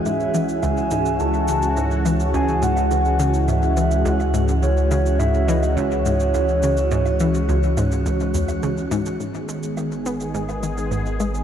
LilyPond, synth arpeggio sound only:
\new Staff \with { instrumentName = "Synth arpeggio sound" } { \clef bass \time 4/4 \key cis \minor \tempo 4 = 105 gis,8 e8 cis,8 gis,8 cis,8 cis8 gis,8 e8 | cis,8 gis,8 cis,8 cis8 gis,8 e8 cis,8 gis,8 | cis,8 cis8 gis,8 e8 cis,8 gis,8 cis,8 cis8 | gis,8 e8 cis,8 gis,8 cis,8 e,8 cis8 gis,8 |
\key gis \minor gis,8 gis8 dis8 b8 gis,8 dis8 gis,8 gis8 | }